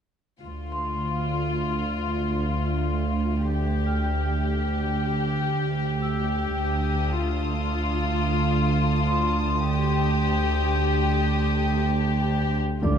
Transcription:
0.42 double bass section D2, cello section D2, violin section F4
0.72 vibraphone C6
3.54 violin section G4
3.86 vibraphone F6
6.02 vibraphone E6
6.59 double bass section D2, cello section D2, violin section A5 D#6
7.24 violin section F4
9.07 vibraphone C6
9.71 violin section G4
12.82 cello section D2 D3, double bass section D2, violin section F4, vibraphone D5 D6, impact

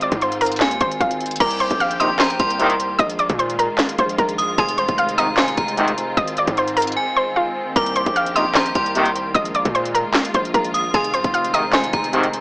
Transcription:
Already playing: 808-style bass G#1, string section D#3 G#3 C4 F4
0.01 synth pluck D5 D6, closed hi-hat
0.12 808-style bass G#2, kick, closed hi-hat
0.21 synth pluck C5 C6, closed hi-hat
0.32 closed hi-hat
0.41 synth pluck A#4 A#5, closed hi-hat, open hi-hat
0.46 closed hi-hat
0.52 closed hi-hat
0.56 closed hi-hat
0.60 808-style bass D#2, synth bell G#5, snare, clap, closed hi-hat
0.71 closed hi-hat
0.81 808-style bass G#1, synth pluck C5 C6, kick, closed hi-hat
0.91 closed hi-hat
1.00 808-style bass G#1, synth pluck F4 F5, kick, closed hi-hat
1.11 closed hi-hat
1.21 closed hi-hat
1.26 closed hi-hat
1.31 closed hi-hat
1.36 closed hi-hat
1.40 808-style bass C2, string section D#3 A#3 C4 G4, synth pluck A#4 A#5, synth bell D6, kick, closed hi-hat, crash
1.51 closed hi-hat
1.60 synth pluck C5 C6, closed hi-hat
1.71 808-style bass A#1, kick, closed hi-hat
1.80 synth pluck F5 F6, closed hi-hat
1.91 closed hi-hat
2.00 brass ensemble A#2 C3 D#3, synth pluck D#5 D#6, synth bell C6, closed hi-hat
2.19 synth pluck C5 C6, synth bell A#5, snare, clap, closed hi-hat
2.30 closed hi-hat
2.40 808-style bass C2, synth bell C6, kick, closed hi-hat
2.50 closed hi-hat
2.60 brass ensemble A#2 C3 D#3, closed hi-hat
2.70 closed hi-hat
2.80 closed hi-hat
2.99 808-style bass A#1, string section G#3 F4, synth pluck D#5 D#6, kick, closed hi-hat
3.10 closed hi-hat
3.19 synth pluck D5 D6, closed hi-hat
3.29 808-style bass A#2, kick, closed hi-hat
3.39 synth pluck C5 C6, closed hi-hat
3.50 closed hi-hat
3.59 synth pluck A#4 A#5, closed hi-hat
3.78 snare, clap, closed hi-hat
3.89 closed hi-hat
3.98 808-style bass A#1, synth pluck C5 C6, kick, closed hi-hat
4.09 closed hi-hat
4.18 808-style bass A#1, synth pluck A#4 A#5, kick, closed hi-hat
4.29 closed hi-hat
4.38 synth bell D#6, closed hi-hat
4.58 808-style bass F1, string section C4, synth pluck G#4 G#5, synth bell C6, kick, closed hi-hat
4.69 closed hi-hat
4.78 808-style bass D#1, synth pluck C5 C6, closed hi-hat
4.88 808-style bass F1, kick, closed hi-hat
4.98 synth pluck F5 F6, closed hi-hat
5.09 closed hi-hat
5.18 brass ensemble G#2 C3 D#3, synth pluck D#5 D#6, synth bell A#5, closed hi-hat
5.37 synth pluck C5 C6, synth bell G#5, snare, clap, closed hi-hat
5.48 closed hi-hat
5.57 808-style bass F1, synth bell A#5, kick, closed hi-hat
5.68 closed hi-hat
5.77 brass ensemble G#2 C3 D#3, closed hi-hat
5.88 closed hi-hat
5.98 closed hi-hat
6.17 808-style bass G#1, synth pluck D#5 D#6, kick, closed hi-hat
6.28 closed hi-hat
6.37 synth pluck D5 D6, closed hi-hat
6.47 808-style bass G#2, kick, closed hi-hat
6.57 synth pluck C5 C6, closed hi-hat
6.68 closed hi-hat
6.77 synth pluck A#4 A#5, closed hi-hat, open hi-hat
6.82 closed hi-hat
6.87 closed hi-hat
6.92 closed hi-hat
6.97 synth bell G#5
7.17 synth pluck C5 C6
7.36 synth pluck F4 F5
7.76 808-style bass C2, string section A#3 G4, synth pluck A#4 A#5, synth bell D6, kick, closed hi-hat
7.86 closed hi-hat
7.96 synth pluck C5 C6, closed hi-hat
8.06 808-style bass A#1, kick, closed hi-hat
8.16 synth pluck F5 F6, closed hi-hat
8.26 closed hi-hat
8.36 brass ensemble A#2 C3 D#3, synth pluck D#5 D#6, synth bell C6, closed hi-hat
8.55 synth pluck C5 C6, synth bell A#5, snare, clap, closed hi-hat
8.66 closed hi-hat
8.75 808-style bass C2, synth bell C6, kick, closed hi-hat
8.86 closed hi-hat
8.95 brass ensemble A#2 C3 D#3, closed hi-hat
9.06 closed hi-hat
9.16 closed hi-hat
9.35 808-style bass A#1, string section G#3 F4, synth pluck D#5 D#6, kick, closed hi-hat
9.45 closed hi-hat
9.55 synth pluck D5 D6, closed hi-hat
9.65 808-style bass A#2, kick, closed hi-hat
9.75 synth pluck C5 C6, closed hi-hat
9.85 closed hi-hat
9.95 synth pluck A#4 A#5, closed hi-hat
10.14 snare, clap, closed hi-hat
10.25 closed hi-hat
10.34 808-style bass A#1, synth pluck C5 C6, kick, closed hi-hat
10.45 closed hi-hat
10.54 808-style bass A#1, synth pluck A#4 A#5, kick, closed hi-hat
10.64 closed hi-hat
10.74 synth bell D#6, closed hi-hat
10.94 808-style bass F1, string section D#3 G#3 C4, synth pluck G#4 G#5, synth bell C6, kick, closed hi-hat
11.04 closed hi-hat
11.14 808-style bass D#1, synth pluck C5 C6, closed hi-hat
11.24 808-style bass F1, kick, closed hi-hat
11.34 synth pluck F5 F6, closed hi-hat
11.44 closed hi-hat
11.54 brass ensemble G#2 C3 D#3, synth pluck D#5 D#6, synth bell A#5, closed hi-hat
11.73 synth pluck C5 C6, synth bell G#5, snare, clap, closed hi-hat
11.84 closed hi-hat
11.93 808-style bass F1, synth bell A#5, kick, closed hi-hat
12.04 closed hi-hat
12.13 brass ensemble G#2 C3 D#3, closed hi-hat
12.23 closed hi-hat
12.33 closed hi-hat

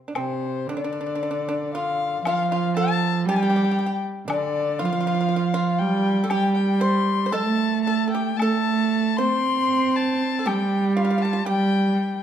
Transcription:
0.08 pipa D4
0.15 cello C3, pipa C4, violin C5, high woodblock
0.67 cello D3, pipa D4, violin D5
0.77 pipa D4
0.84 pipa D4
0.93 pipa D4
1.01 pipa D4
1.06 pipa D4
1.15 pipa D4
1.23 pipa D4
1.31 pipa D4
1.49 pipa D4
1.74 pipa F4, violin F5
2.23 cello F3, pipa F4, violin F5, high woodblock
2.51 pipa F4, violin F5
2.77 pipa A4, violin A5
3.25 cello G3, pipa G4, violin G5
3.36 pipa G4
3.42 pipa G4
3.50 pipa G4
3.56 pipa G4
3.64 pipa G4
3.71 pipa G4
3.79 pipa G4
3.86 pipa G4
4.27 cello D3, pipa D4, violin D5, high woodblock
4.79 cello F3, pipa F4, violin F5
4.85 pipa F4
4.92 pipa F4
5.01 pipa F4
5.07 pipa F4
5.15 pipa F4
5.21 pipa F4
5.29 pipa F4
5.36 pipa F4
5.54 pipa F4
5.78 cello G3, violin G5
6.24 pipa A4
6.29 cello G3, pipa G4, violin G5, high woodblock
6.54 violin G5
6.80 pipa C5, violin C6
7.26 pipa C5
7.31 cello A3, pipa A4, violin A5, low woodblock
7.84 pipa A4, violin A5
8.08 pipa A4, violin G5
8.15 pipa G4
8.37 cello A3, violin A5, high woodblock
8.42 pipa A4
9.17 cello C4, pipa C5, violin C6
9.96 violin A5
10.39 pipa A4
10.46 cello G3, pipa G4, violin G5, high woodblock
10.97 pipa F4, violin F5
11.05 pipa F4
11.11 pipa F4
11.18 pipa F4, violin A5
11.25 pipa F4
11.33 pipa F4
11.46 cello G3, pipa G4, violin G5

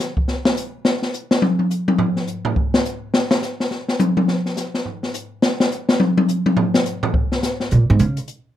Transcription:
0.17 kick
0.28 snare
0.45 snare
0.56 hi-hat pedal
0.85 snare
1.02 snare
1.14 hi-hat pedal
1.31 snare
1.42 high tom
1.59 high tom
1.70 hi-hat pedal
1.88 high tom
1.98 floor tom
2.16 snare
2.27 hi-hat pedal
2.45 floor tom
2.56 kick
2.74 snare
2.85 hi-hat pedal
3.14 snare
3.31 snare
3.42 snare, hi-hat pedal
3.60 snare
3.71 snare
3.88 snare
4.00 hi-hat pedal, high tom
4.17 high tom
4.28 snare
4.46 snare
4.57 snare, hi-hat pedal
4.74 snare
4.85 floor tom
5.03 snare
5.14 hi-hat pedal
5.42 snare
5.60 snare
5.71 hi-hat pedal
5.89 snare
6.00 high tom
6.18 high tom
6.28 hi-hat pedal
6.46 high tom
6.57 floor tom
6.74 snare
6.85 hi-hat pedal
7.03 floor tom
7.14 kick
7.32 snare
7.43 snare, hi-hat pedal
7.60 snare
7.71 upright bass A#2, closed hi-hat
7.90 upright bass G#2
7.99 upright bass C#3, closed hi-hat
8.17 closed hi-hat
8.28 closed hi-hat

